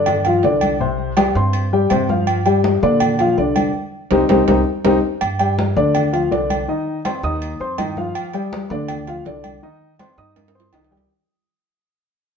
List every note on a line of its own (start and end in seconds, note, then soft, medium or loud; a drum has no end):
0.00 0.40 G2 loud
0.00 0.19 D3 medium
0.00 0.19 D4 medium
0.00 0.19 D5 medium
0.06 high conga soft
0.06 low conga medium
0.06 low agogo loud
0.25 0.41 F3 medium
0.25 0.41 F4 medium
0.25 0.41 F5 medium
0.25 high conga soft
0.25 low conga medium
0.25 low agogo medium
0.43 1.30 C2 medium
0.43 0.74 D3 medium
0.43 0.74 D4 medium
0.43 0.74 D5 medium
0.43 high conga soft
0.43 low timbale medium
0.61 high conga medium
0.61 low agogo loud
0.80 1.11 C3 medium
0.80 1.11 C4 medium
0.80 1.11 C5 medium
0.80 high conga soft
0.99 high conga soft
1.17 1.32 G3 medium
1.17 1.32 G4 medium
1.17 1.33 G5 medium
1.17 high conga loud
1.17 low agogo loud
1.35 1.87 G2 loud
1.35 1.66 C4 medium
1.35 1.66 C5 medium
1.35 1.66 C6 medium
1.35 high conga soft
1.53 high conga soft
1.53 low agogo medium
1.73 1.88 G3 medium
1.73 1.88 G4 medium
1.73 1.88 G5 medium
1.73 high conga soft
1.90 2.77 G2 medium
1.90 2.06 C3 medium
1.90 2.06 C4 medium
1.90 2.06 C5 medium
1.90 high conga medium
1.90 low agogo loud
2.09 2.39 F3 medium
2.09 2.39 F4 medium
2.09 2.40 F5 medium
2.09 high conga medium
2.27 high conga soft
2.27 low agogo loud
2.46 2.76 G3 medium
2.46 2.76 G4 medium
2.46 2.76 G5 medium
2.46 high conga soft
2.46 low agogo medium
2.64 high conga loud
2.83 3.34 A#2 loud
2.83 3.13 D3 medium
2.83 3.13 D4 loud
2.83 3.13 D5 medium
2.83 high conga soft
3.00 high conga soft
3.00 low conga medium
3.00 low agogo loud
3.19 3.35 F3 medium
3.19 3.35 F4 medium
3.19 3.35 F5 medium
3.19 high conga soft
3.19 low conga medium
3.19 low agogo medium
3.38 3.72 C2 medium
3.38 3.68 D3 medium
3.38 3.68 D4 medium
3.38 3.68 D5 medium
3.38 high conga soft
3.56 high conga medium
3.56 low agogo loud
4.11 4.25 C2 loud
4.11 4.23 C4 loud
4.11 4.23 D#4 loud
4.11 4.23 G4 loud
4.11 high conga loud
4.11 high timbale medium
4.29 4.43 C2 loud
4.29 4.41 C4 loud
4.29 4.41 D#4 loud
4.29 4.41 G4 loud
4.29 high conga loud
4.29 high timbale loud
4.48 4.62 C2 loud
4.48 4.60 C4 medium
4.48 4.60 D#4 loud
4.48 4.60 G4 loud
4.48 high conga medium
4.48 high timbale loud
4.84 4.98 C2 loud
4.84 4.97 C4 loud
4.84 4.97 D#4 loud
4.84 4.97 G4 loud
4.84 high conga loud
4.84 high timbale loud
5.21 5.73 G2 loud
5.21 high conga soft
5.21 low agogo loud
5.39 5.70 G3 medium
5.39 5.70 G4 medium
5.39 5.70 G5 medium
5.39 high conga soft
5.39 low agogo medium
5.59 high conga loud
5.76 6.28 D2 loud
5.76 6.07 D3 medium
5.76 6.07 D4 medium
5.76 6.07 D5 medium
5.76 high conga soft
5.95 high conga soft
5.95 low conga medium
5.95 low agogo loud
6.13 6.28 F3 medium
6.13 6.28 F4 medium
6.13 6.28 F5 medium
6.13 high conga soft
6.13 low agogo medium
6.31 6.64 C2 medium
6.31 6.62 D3 medium
6.31 6.62 D4 medium
6.31 6.62 D5 medium
6.31 high conga soft
6.31 low timbale medium
6.50 high conga medium
6.50 low agogo loud
6.68 6.98 D#3 medium
6.68 6.99 D#4 medium
6.68 6.99 D#5 medium
6.68 high conga soft
6.87 high conga soft
7.05 7.20 C4 medium
7.05 7.20 C5 medium
7.05 7.21 C6 medium
7.05 high conga loud
7.05 low agogo loud
7.23 7.58 D#2 loud
7.23 7.54 D#4 medium
7.23 7.54 D#5 medium
7.23 7.54 D#6 medium
7.23 high conga soft
7.42 high conga soft
7.42 low agogo medium
7.60 7.77 F2 medium
7.60 7.75 C4 medium
7.60 7.76 C5 medium
7.60 7.76 C6 medium
7.60 high conga soft
7.78 8.11 G2 medium
7.78 7.94 D#3 medium
7.78 7.94 D#4 medium
7.78 7.94 D#5 medium
7.78 high conga medium
7.78 low timbale medium
7.78 low agogo loud
7.97 8.27 F3 medium
7.97 8.28 F4 medium
7.97 8.28 F5 medium
7.97 high conga medium
8.15 high conga soft
8.15 low agogo loud
8.33 8.64 G3 medium
8.33 8.64 G4 medium
8.33 8.64 G5 medium
8.33 low agogo medium
8.53 high conga loud
8.70 9.22 D2 loud
8.70 9.01 D3 medium
8.70 9.01 D4 medium
8.70 9.01 D5 loud
8.70 high conga soft
8.88 high conga soft
8.88 low conga medium
8.88 low agogo loud
9.07 9.23 F3 medium
9.07 9.23 F4 medium
9.07 9.23 F5 medium
9.07 high conga soft
9.07 low conga medium
9.07 low agogo loud
9.25 9.58 C2 medium
9.25 9.56 D3 medium
9.25 9.56 D4 medium
9.25 9.57 D5 medium
9.25 high conga soft
9.25 low timbale medium
9.44 high conga medium
9.44 low agogo loud
9.63 9.93 D#3 loud
9.63 9.93 D#4 medium
9.63 9.93 D#5 medium
9.63 high conga soft
9.81 high conga soft
9.99 10.14 C4 medium
9.99 10.15 C5 medium
9.99 10.15 C6 medium
9.99 high conga loud
9.99 low agogo loud
10.18 10.69 G2 loud
10.18 10.48 D#4 medium
10.18 10.48 D#5 medium
10.18 10.48 D#6 medium
10.18 high conga soft
10.36 high conga medium
10.36 high timbale loud
10.36 low agogo medium
10.48 high timbale loud
10.55 10.70 C4 medium
10.55 10.70 C5 medium
10.55 10.70 C6 medium
10.60 low timbale loud
10.73 11.06 C2 medium
10.73 10.88 D#3 medium
10.73 10.88 D#4 medium
10.73 10.88 D#5 medium
10.73 low conga loud
10.73 low timbale medium
10.73 low agogo loud
10.84 low timbale medium
10.91 11.06 G3 medium
10.91 11.06 G4 medium
10.91 11.07 G5 medium
10.91 low conga medium
10.97 low timbale medium